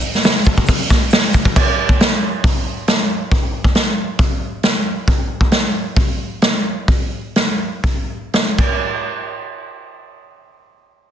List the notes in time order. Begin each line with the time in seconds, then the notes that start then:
0.01 shaker
0.12 snare, shaker
0.23 snare, open hi-hat, shaker
0.33 shaker
0.44 kick, shaker
0.55 kick, shaker
0.67 kick, open hi-hat, shaker
0.77 shaker
0.89 kick, snare, shaker
1.00 shaker
1.11 snare, open hi-hat, shaker
1.21 shaker
1.33 kick, shaker
1.44 kick, shaker
1.56 kick, crash
1.89 kick
2.00 snare, open hi-hat
2.44 kick, open hi-hat
2.88 snare, open hi-hat
3.31 kick, open hi-hat
3.64 kick
3.75 snare, open hi-hat
4.19 kick, open hi-hat
4.63 snare, open hi-hat
5.08 kick, open hi-hat
5.41 kick
5.51 snare, open hi-hat
5.96 kick, open hi-hat
6.42 snare, open hi-hat
6.88 kick, open hi-hat
7.36 snare, open hi-hat
7.84 kick, open hi-hat
8.33 snare, open hi-hat
8.58 kick, crash